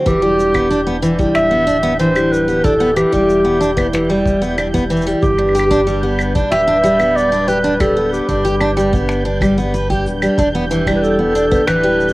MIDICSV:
0, 0, Header, 1, 7, 480
1, 0, Start_track
1, 0, Tempo, 645161
1, 45, Time_signature, 4, 2, 24, 8
1, 9025, End_track
2, 0, Start_track
2, 0, Title_t, "Synth texture"
2, 0, Program_c, 0, 99
2, 44, Note_on_c, 0, 91, 77
2, 9025, Note_off_c, 0, 91, 0
2, 9025, End_track
3, 0, Start_track
3, 0, Title_t, "Clarinet"
3, 0, Program_c, 1, 71
3, 44, Note_on_c, 1, 67, 110
3, 735, Note_off_c, 1, 67, 0
3, 1004, Note_on_c, 1, 76, 116
3, 1455, Note_off_c, 1, 76, 0
3, 1486, Note_on_c, 1, 72, 96
3, 1726, Note_on_c, 1, 71, 94
3, 1737, Note_off_c, 1, 72, 0
3, 1965, Note_on_c, 1, 69, 95
3, 1976, Note_off_c, 1, 71, 0
3, 2200, Note_off_c, 1, 69, 0
3, 2204, Note_on_c, 1, 67, 92
3, 3135, Note_off_c, 1, 67, 0
3, 3887, Note_on_c, 1, 67, 111
3, 4576, Note_off_c, 1, 67, 0
3, 4846, Note_on_c, 1, 76, 113
3, 5327, Note_on_c, 1, 74, 112
3, 5338, Note_off_c, 1, 76, 0
3, 5568, Note_on_c, 1, 71, 94
3, 5579, Note_off_c, 1, 74, 0
3, 5810, Note_on_c, 1, 69, 94
3, 5821, Note_off_c, 1, 71, 0
3, 6042, Note_off_c, 1, 69, 0
3, 6047, Note_on_c, 1, 67, 80
3, 6976, Note_off_c, 1, 67, 0
3, 8151, Note_on_c, 1, 71, 63
3, 8203, Note_on_c, 1, 69, 90
3, 8215, Note_off_c, 1, 71, 0
3, 8675, Note_off_c, 1, 69, 0
3, 8679, Note_on_c, 1, 71, 102
3, 9017, Note_off_c, 1, 71, 0
3, 9025, End_track
4, 0, Start_track
4, 0, Title_t, "Analog synth pad"
4, 0, Program_c, 2, 89
4, 46, Note_on_c, 2, 62, 66
4, 47, Note_on_c, 2, 52, 68
4, 47, Note_on_c, 2, 67, 78
4, 1947, Note_off_c, 2, 62, 0
4, 1971, Note_on_c, 2, 64, 70
4, 3856, Note_off_c, 2, 52, 0
4, 3857, Note_off_c, 2, 67, 0
4, 3869, Note_off_c, 2, 64, 0
4, 3883, Note_on_c, 2, 62, 69
4, 3884, Note_on_c, 2, 71, 82
4, 3885, Note_on_c, 2, 55, 74
4, 7695, Note_off_c, 2, 55, 0
4, 7695, Note_off_c, 2, 71, 0
4, 7727, Note_on_c, 2, 67, 76
4, 7728, Note_on_c, 2, 52, 72
4, 9025, Note_off_c, 2, 52, 0
4, 9025, Note_off_c, 2, 62, 0
4, 9025, Note_off_c, 2, 67, 0
4, 9025, End_track
5, 0, Start_track
5, 0, Title_t, "Steel-string acoustic guitar"
5, 0, Program_c, 3, 25
5, 44, Note_on_c, 3, 52, 89
5, 153, Note_off_c, 3, 52, 0
5, 166, Note_on_c, 3, 55, 64
5, 394, Note_off_c, 3, 55, 0
5, 405, Note_on_c, 3, 59, 75
5, 513, Note_off_c, 3, 59, 0
5, 525, Note_on_c, 3, 62, 87
5, 594, Note_off_c, 3, 62, 0
5, 645, Note_on_c, 3, 59, 90
5, 714, Note_off_c, 3, 59, 0
5, 763, Note_on_c, 3, 52, 93
5, 872, Note_off_c, 3, 52, 0
5, 884, Note_on_c, 3, 55, 67
5, 1113, Note_off_c, 3, 55, 0
5, 1124, Note_on_c, 3, 59, 73
5, 1233, Note_off_c, 3, 59, 0
5, 1243, Note_on_c, 3, 62, 98
5, 1312, Note_off_c, 3, 62, 0
5, 1362, Note_on_c, 3, 59, 102
5, 1432, Note_off_c, 3, 59, 0
5, 1485, Note_on_c, 3, 52, 89
5, 1593, Note_off_c, 3, 52, 0
5, 1603, Note_on_c, 3, 55, 71
5, 1832, Note_off_c, 3, 55, 0
5, 1843, Note_on_c, 3, 59, 76
5, 1952, Note_off_c, 3, 59, 0
5, 1964, Note_on_c, 3, 62, 97
5, 2033, Note_off_c, 3, 62, 0
5, 2083, Note_on_c, 3, 59, 86
5, 2153, Note_off_c, 3, 59, 0
5, 2204, Note_on_c, 3, 52, 104
5, 2313, Note_off_c, 3, 52, 0
5, 2323, Note_on_c, 3, 55, 78
5, 2552, Note_off_c, 3, 55, 0
5, 2562, Note_on_c, 3, 59, 70
5, 2672, Note_off_c, 3, 59, 0
5, 2682, Note_on_c, 3, 62, 89
5, 2752, Note_off_c, 3, 62, 0
5, 2802, Note_on_c, 3, 59, 100
5, 2872, Note_off_c, 3, 59, 0
5, 2925, Note_on_c, 3, 52, 103
5, 3033, Note_off_c, 3, 52, 0
5, 3046, Note_on_c, 3, 55, 77
5, 3274, Note_off_c, 3, 55, 0
5, 3283, Note_on_c, 3, 59, 74
5, 3392, Note_off_c, 3, 59, 0
5, 3404, Note_on_c, 3, 62, 93
5, 3473, Note_off_c, 3, 62, 0
5, 3525, Note_on_c, 3, 59, 101
5, 3593, Note_off_c, 3, 59, 0
5, 3646, Note_on_c, 3, 52, 93
5, 3754, Note_off_c, 3, 52, 0
5, 3769, Note_on_c, 3, 55, 80
5, 3887, Note_off_c, 3, 55, 0
5, 4006, Note_on_c, 3, 62, 73
5, 4114, Note_off_c, 3, 62, 0
5, 4127, Note_on_c, 3, 67, 98
5, 4195, Note_off_c, 3, 67, 0
5, 4246, Note_on_c, 3, 62, 106
5, 4314, Note_off_c, 3, 62, 0
5, 4365, Note_on_c, 3, 55, 88
5, 4473, Note_off_c, 3, 55, 0
5, 4486, Note_on_c, 3, 59, 67
5, 4713, Note_off_c, 3, 59, 0
5, 4724, Note_on_c, 3, 62, 75
5, 4833, Note_off_c, 3, 62, 0
5, 4847, Note_on_c, 3, 67, 93
5, 4914, Note_off_c, 3, 67, 0
5, 4966, Note_on_c, 3, 62, 99
5, 5034, Note_off_c, 3, 62, 0
5, 5086, Note_on_c, 3, 55, 98
5, 5194, Note_off_c, 3, 55, 0
5, 5204, Note_on_c, 3, 59, 78
5, 5433, Note_off_c, 3, 59, 0
5, 5446, Note_on_c, 3, 62, 76
5, 5554, Note_off_c, 3, 62, 0
5, 5565, Note_on_c, 3, 67, 97
5, 5633, Note_off_c, 3, 67, 0
5, 5686, Note_on_c, 3, 62, 96
5, 5754, Note_off_c, 3, 62, 0
5, 5805, Note_on_c, 3, 55, 98
5, 5913, Note_off_c, 3, 55, 0
5, 5927, Note_on_c, 3, 59, 69
5, 6154, Note_off_c, 3, 59, 0
5, 6165, Note_on_c, 3, 62, 73
5, 6273, Note_off_c, 3, 62, 0
5, 6284, Note_on_c, 3, 67, 88
5, 6353, Note_off_c, 3, 67, 0
5, 6405, Note_on_c, 3, 62, 90
5, 6474, Note_off_c, 3, 62, 0
5, 6525, Note_on_c, 3, 55, 97
5, 6633, Note_off_c, 3, 55, 0
5, 6644, Note_on_c, 3, 59, 71
5, 6872, Note_off_c, 3, 59, 0
5, 6884, Note_on_c, 3, 62, 69
5, 6992, Note_off_c, 3, 62, 0
5, 7006, Note_on_c, 3, 55, 68
5, 7114, Note_off_c, 3, 55, 0
5, 7126, Note_on_c, 3, 59, 72
5, 7234, Note_off_c, 3, 59, 0
5, 7248, Note_on_c, 3, 71, 72
5, 7354, Note_off_c, 3, 71, 0
5, 7367, Note_on_c, 3, 67, 77
5, 7474, Note_off_c, 3, 67, 0
5, 7606, Note_on_c, 3, 55, 73
5, 7714, Note_off_c, 3, 55, 0
5, 7727, Note_on_c, 3, 62, 98
5, 7794, Note_off_c, 3, 62, 0
5, 7848, Note_on_c, 3, 59, 91
5, 7915, Note_off_c, 3, 59, 0
5, 7967, Note_on_c, 3, 52, 89
5, 8074, Note_off_c, 3, 52, 0
5, 8087, Note_on_c, 3, 55, 77
5, 8314, Note_off_c, 3, 55, 0
5, 8324, Note_on_c, 3, 59, 70
5, 8432, Note_off_c, 3, 59, 0
5, 8445, Note_on_c, 3, 62, 101
5, 8513, Note_off_c, 3, 62, 0
5, 8566, Note_on_c, 3, 59, 98
5, 8634, Note_off_c, 3, 59, 0
5, 8686, Note_on_c, 3, 52, 98
5, 8794, Note_off_c, 3, 52, 0
5, 8805, Note_on_c, 3, 55, 75
5, 9025, Note_off_c, 3, 55, 0
5, 9025, End_track
6, 0, Start_track
6, 0, Title_t, "Sub bass"
6, 0, Program_c, 4, 38
6, 48, Note_on_c, 4, 28, 97
6, 941, Note_off_c, 4, 28, 0
6, 1008, Note_on_c, 4, 26, 108
6, 2261, Note_off_c, 4, 26, 0
6, 2329, Note_on_c, 4, 28, 101
6, 3822, Note_off_c, 4, 28, 0
6, 3888, Note_on_c, 4, 31, 95
6, 4781, Note_off_c, 4, 31, 0
6, 4848, Note_on_c, 4, 26, 101
6, 6101, Note_off_c, 4, 26, 0
6, 6166, Note_on_c, 4, 31, 85
6, 7486, Note_on_c, 4, 26, 106
6, 7497, Note_off_c, 4, 31, 0
6, 7644, Note_off_c, 4, 26, 0
6, 7722, Note_on_c, 4, 28, 97
6, 8618, Note_off_c, 4, 28, 0
6, 8688, Note_on_c, 4, 26, 105
6, 9025, Note_off_c, 4, 26, 0
6, 9025, End_track
7, 0, Start_track
7, 0, Title_t, "Drums"
7, 48, Note_on_c, 9, 36, 105
7, 56, Note_on_c, 9, 82, 57
7, 122, Note_off_c, 9, 36, 0
7, 130, Note_off_c, 9, 82, 0
7, 296, Note_on_c, 9, 82, 82
7, 371, Note_off_c, 9, 82, 0
7, 407, Note_on_c, 9, 36, 54
7, 409, Note_on_c, 9, 75, 78
7, 418, Note_on_c, 9, 82, 50
7, 482, Note_off_c, 9, 36, 0
7, 484, Note_off_c, 9, 75, 0
7, 492, Note_off_c, 9, 82, 0
7, 534, Note_on_c, 9, 82, 52
7, 608, Note_off_c, 9, 82, 0
7, 771, Note_on_c, 9, 82, 81
7, 845, Note_off_c, 9, 82, 0
7, 889, Note_on_c, 9, 36, 100
7, 893, Note_on_c, 9, 82, 48
7, 963, Note_off_c, 9, 36, 0
7, 967, Note_off_c, 9, 82, 0
7, 1005, Note_on_c, 9, 75, 69
7, 1006, Note_on_c, 9, 26, 76
7, 1013, Note_on_c, 9, 82, 45
7, 1079, Note_off_c, 9, 75, 0
7, 1081, Note_off_c, 9, 26, 0
7, 1088, Note_off_c, 9, 82, 0
7, 1255, Note_on_c, 9, 82, 76
7, 1329, Note_off_c, 9, 82, 0
7, 1493, Note_on_c, 9, 82, 53
7, 1567, Note_off_c, 9, 82, 0
7, 1609, Note_on_c, 9, 75, 88
7, 1612, Note_on_c, 9, 82, 51
7, 1683, Note_off_c, 9, 75, 0
7, 1687, Note_off_c, 9, 82, 0
7, 1737, Note_on_c, 9, 82, 84
7, 1812, Note_off_c, 9, 82, 0
7, 1848, Note_on_c, 9, 82, 52
7, 1922, Note_off_c, 9, 82, 0
7, 1967, Note_on_c, 9, 36, 111
7, 1973, Note_on_c, 9, 82, 68
7, 2041, Note_off_c, 9, 36, 0
7, 2048, Note_off_c, 9, 82, 0
7, 2207, Note_on_c, 9, 75, 72
7, 2210, Note_on_c, 9, 82, 84
7, 2282, Note_off_c, 9, 75, 0
7, 2285, Note_off_c, 9, 82, 0
7, 2329, Note_on_c, 9, 36, 60
7, 2330, Note_on_c, 9, 82, 53
7, 2403, Note_off_c, 9, 36, 0
7, 2404, Note_off_c, 9, 82, 0
7, 2451, Note_on_c, 9, 82, 59
7, 2525, Note_off_c, 9, 82, 0
7, 2692, Note_on_c, 9, 82, 80
7, 2766, Note_off_c, 9, 82, 0
7, 2804, Note_on_c, 9, 36, 85
7, 2812, Note_on_c, 9, 75, 75
7, 2815, Note_on_c, 9, 82, 51
7, 2879, Note_off_c, 9, 36, 0
7, 2886, Note_off_c, 9, 75, 0
7, 2889, Note_off_c, 9, 82, 0
7, 2933, Note_on_c, 9, 82, 53
7, 2935, Note_on_c, 9, 26, 72
7, 3008, Note_off_c, 9, 82, 0
7, 3010, Note_off_c, 9, 26, 0
7, 3164, Note_on_c, 9, 36, 102
7, 3172, Note_on_c, 9, 82, 88
7, 3238, Note_off_c, 9, 36, 0
7, 3247, Note_off_c, 9, 82, 0
7, 3291, Note_on_c, 9, 82, 52
7, 3365, Note_off_c, 9, 82, 0
7, 3406, Note_on_c, 9, 82, 50
7, 3408, Note_on_c, 9, 75, 84
7, 3481, Note_off_c, 9, 82, 0
7, 3482, Note_off_c, 9, 75, 0
7, 3530, Note_on_c, 9, 36, 60
7, 3537, Note_on_c, 9, 82, 51
7, 3604, Note_off_c, 9, 36, 0
7, 3612, Note_off_c, 9, 82, 0
7, 3650, Note_on_c, 9, 82, 38
7, 3690, Note_off_c, 9, 82, 0
7, 3690, Note_on_c, 9, 82, 50
7, 3729, Note_off_c, 9, 82, 0
7, 3729, Note_on_c, 9, 82, 59
7, 3776, Note_off_c, 9, 82, 0
7, 3776, Note_on_c, 9, 82, 48
7, 3850, Note_off_c, 9, 82, 0
7, 3887, Note_on_c, 9, 82, 63
7, 3888, Note_on_c, 9, 36, 124
7, 3961, Note_off_c, 9, 82, 0
7, 3963, Note_off_c, 9, 36, 0
7, 4004, Note_on_c, 9, 75, 34
7, 4078, Note_off_c, 9, 75, 0
7, 4083, Note_on_c, 9, 75, 46
7, 4136, Note_on_c, 9, 82, 81
7, 4157, Note_off_c, 9, 75, 0
7, 4162, Note_on_c, 9, 75, 59
7, 4210, Note_off_c, 9, 82, 0
7, 4237, Note_off_c, 9, 75, 0
7, 4245, Note_on_c, 9, 36, 58
7, 4258, Note_on_c, 9, 82, 54
7, 4320, Note_off_c, 9, 36, 0
7, 4333, Note_off_c, 9, 82, 0
7, 4373, Note_on_c, 9, 82, 58
7, 4447, Note_off_c, 9, 82, 0
7, 4603, Note_on_c, 9, 75, 83
7, 4615, Note_on_c, 9, 82, 84
7, 4677, Note_off_c, 9, 75, 0
7, 4689, Note_off_c, 9, 82, 0
7, 4729, Note_on_c, 9, 36, 111
7, 4734, Note_on_c, 9, 82, 50
7, 4803, Note_off_c, 9, 36, 0
7, 4809, Note_off_c, 9, 82, 0
7, 4850, Note_on_c, 9, 26, 71
7, 4852, Note_on_c, 9, 82, 60
7, 4924, Note_off_c, 9, 26, 0
7, 4926, Note_off_c, 9, 82, 0
7, 5094, Note_on_c, 9, 82, 84
7, 5168, Note_off_c, 9, 82, 0
7, 5207, Note_on_c, 9, 75, 72
7, 5214, Note_on_c, 9, 82, 51
7, 5282, Note_off_c, 9, 75, 0
7, 5289, Note_off_c, 9, 82, 0
7, 5340, Note_on_c, 9, 82, 64
7, 5415, Note_off_c, 9, 82, 0
7, 5454, Note_on_c, 9, 82, 52
7, 5529, Note_off_c, 9, 82, 0
7, 5573, Note_on_c, 9, 82, 75
7, 5648, Note_off_c, 9, 82, 0
7, 5694, Note_on_c, 9, 82, 49
7, 5768, Note_off_c, 9, 82, 0
7, 5806, Note_on_c, 9, 36, 123
7, 5807, Note_on_c, 9, 75, 75
7, 5811, Note_on_c, 9, 82, 69
7, 5881, Note_off_c, 9, 36, 0
7, 5881, Note_off_c, 9, 75, 0
7, 5885, Note_off_c, 9, 82, 0
7, 6054, Note_on_c, 9, 82, 72
7, 6128, Note_off_c, 9, 82, 0
7, 6165, Note_on_c, 9, 36, 58
7, 6172, Note_on_c, 9, 82, 56
7, 6239, Note_off_c, 9, 36, 0
7, 6246, Note_off_c, 9, 82, 0
7, 6294, Note_on_c, 9, 82, 55
7, 6368, Note_off_c, 9, 82, 0
7, 6404, Note_on_c, 9, 75, 73
7, 6478, Note_off_c, 9, 75, 0
7, 6540, Note_on_c, 9, 82, 84
7, 6614, Note_off_c, 9, 82, 0
7, 6647, Note_on_c, 9, 36, 106
7, 6657, Note_on_c, 9, 82, 51
7, 6721, Note_off_c, 9, 36, 0
7, 6731, Note_off_c, 9, 82, 0
7, 6763, Note_on_c, 9, 26, 67
7, 6778, Note_on_c, 9, 82, 57
7, 6837, Note_off_c, 9, 26, 0
7, 6852, Note_off_c, 9, 82, 0
7, 7001, Note_on_c, 9, 36, 96
7, 7008, Note_on_c, 9, 75, 77
7, 7016, Note_on_c, 9, 82, 76
7, 7075, Note_off_c, 9, 36, 0
7, 7083, Note_off_c, 9, 75, 0
7, 7090, Note_off_c, 9, 82, 0
7, 7135, Note_on_c, 9, 82, 55
7, 7209, Note_off_c, 9, 82, 0
7, 7251, Note_on_c, 9, 82, 53
7, 7326, Note_off_c, 9, 82, 0
7, 7367, Note_on_c, 9, 36, 62
7, 7374, Note_on_c, 9, 82, 45
7, 7441, Note_off_c, 9, 36, 0
7, 7449, Note_off_c, 9, 82, 0
7, 7489, Note_on_c, 9, 82, 87
7, 7563, Note_off_c, 9, 82, 0
7, 7605, Note_on_c, 9, 75, 72
7, 7611, Note_on_c, 9, 82, 53
7, 7679, Note_off_c, 9, 75, 0
7, 7685, Note_off_c, 9, 82, 0
7, 7722, Note_on_c, 9, 36, 109
7, 7736, Note_on_c, 9, 82, 65
7, 7796, Note_off_c, 9, 36, 0
7, 7810, Note_off_c, 9, 82, 0
7, 7968, Note_on_c, 9, 82, 77
7, 8043, Note_off_c, 9, 82, 0
7, 8082, Note_on_c, 9, 36, 56
7, 8091, Note_on_c, 9, 75, 78
7, 8096, Note_on_c, 9, 82, 53
7, 8157, Note_off_c, 9, 36, 0
7, 8165, Note_off_c, 9, 75, 0
7, 8170, Note_off_c, 9, 82, 0
7, 8213, Note_on_c, 9, 82, 55
7, 8287, Note_off_c, 9, 82, 0
7, 8452, Note_on_c, 9, 82, 74
7, 8526, Note_off_c, 9, 82, 0
7, 8569, Note_on_c, 9, 36, 89
7, 8575, Note_on_c, 9, 82, 48
7, 8643, Note_off_c, 9, 36, 0
7, 8650, Note_off_c, 9, 82, 0
7, 8685, Note_on_c, 9, 26, 60
7, 8689, Note_on_c, 9, 75, 68
7, 8693, Note_on_c, 9, 82, 53
7, 8759, Note_off_c, 9, 26, 0
7, 8764, Note_off_c, 9, 75, 0
7, 8767, Note_off_c, 9, 82, 0
7, 8931, Note_on_c, 9, 82, 38
7, 8990, Note_off_c, 9, 82, 0
7, 8990, Note_on_c, 9, 82, 47
7, 9025, Note_off_c, 9, 82, 0
7, 9025, End_track
0, 0, End_of_file